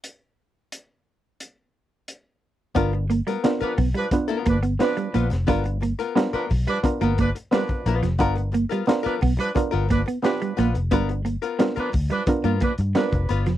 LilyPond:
<<
  \new Staff \with { instrumentName = "Hollow-body jazz guitar" } { \time 4/4 \key g \mixolydian \tempo 4 = 88 r1 | <b f' ais'>16 r8 <b f' ais'>16 r16 <b f' ais'>16 r8. <b f' ais'>16 r4 <b f' b'>16 r16 | <b f' ais'>16 r8 <b f' ais'>16 r16 <b f' ais'>16 r8. <b f' ais'>16 r4 <b f' b'>16 r16 | <b f' ais'>16 r8 <b f' ais'>16 r16 <b f' ais'>16 r8. <b f' ais'>16 r4 <b f' b'>16 r16 |
<b f' ais'>16 r8 <b f' ais'>16 r16 <b f' ais'>16 r8. <b f' ais'>16 r4 <b f' b'>16 r16 | }
  \new Staff \with { instrumentName = "Clav" } { \time 4/4 \key g \mixolydian r1 | <b d' f' ais'>8 r8 <b d' f' ais'>8 r8 <b d' f' b'>8 r8 <b d' f' b'>8 r8 | <b d' f' b'>8 r8 <b d' f' ais'>8 r8 <b d' f' ais'>8 r8 <b d' f' ais'>8 r8 | <b d' f' ais'>8 r8 <b d' f' ais'>8 r8 <b d' f' ais'>8 r8 <b d' f' g'>8 r8 |
<b d' f' b'>8 r8 <b d' f' ais'>8 r8 <b d' f' ais'>8 r8 <b d' f' ais'>8 r8 | }
  \new Staff \with { instrumentName = "Horn section" } { \time 4/4 \key g \mixolydian r1 | r4 r16 <f d' b'>16 r16 <f d' b'>16 r8 <f d' b'>16 r16 <f d' b'>8. r16 | r4 r16 <f d' b'>16 r16 <f d' b'>16 r8 <f d' b'>16 r16 <f d' b'>8. r16 | r4 r16 <f d' b'>16 r16 <f d' b'>16 r8 <f d' b'>16 r16 <f d' b'>8. r16 |
r4 r16 <f d' b'>16 r16 <f d' b'>16 r8 <f d' b'>16 r16 <f d' b'>8. r16 | }
  \new Staff \with { instrumentName = "Clean electric guitar" } { \clef bass \time 4/4 \key g \mixolydian r1 | r8 ais16 g16 r8 b16 g16 r8 ais16 b16 r16 g16 ais16 r16 | g16 r16 ais16 r16 g16 r8 g16 r16 ais16 ais16 r16 g16 r8 f16 | r8 ais16 g16 r8 b16 g16 r8 ais16 b16 r16 g16 ais16 r16 |
g16 r16 ais16 r16 g16 r8 g16 r16 ais16 ais16 r16 g16 r8 f16 | }
  \new Staff \with { instrumentName = "Fingered electric bass" } { \clef bass \time 4/4 \key g \mixolydian r1 | g,,8. r8. b,,16 r8. g,,8 r8 ais,,16 f,,16 | g,,8. r8. b,,16 r8 g,,8 r8. ais,,16 f,,16 | g,,8. r8. b,,16 r8 g,,8 r8. ais,,16 f,,16 |
g,,8. r8. d,16 r8 g,16 r16 g,16 r16 f,,16 g,,16 f,,16 | }
  \new DrumStaff \with { instrumentName = "Drums" } \drummode { \time 4/4 hh4 hh4 hh4 hh4 | <hh bd>8 hh16 hh16 <hh sn>16 hh16 <hho bd>16 hh16 <hh bd>16 hh16 <hh bd>16 hh16 <hh sn>16 hh16 hh16 <hh sn>16 | <hh bd>16 hh16 hh16 hh16 <hh sn>16 hh16 <hho bd>16 hh16 <hh bd>16 hh16 <hh bd>16 hh16 <hh sn>16 <hh bd>16 hh16 <hh sn>16 | <hh bd>16 hh16 hh16 hh16 <hh sn>16 hh16 <hho bd>16 hh16 <hh bd>8 <hh bd>16 hh16 <hh sn>16 hh16 hh16 hh16 |
<hh bd>16 hh16 hh16 hh16 <hh sn>16 hh16 <hho bd>16 hh16 <hh bd>16 hh16 <hh bd>16 hh16 <hh sn>16 <hh bd>16 hh16 <hh sn>16 | }
>>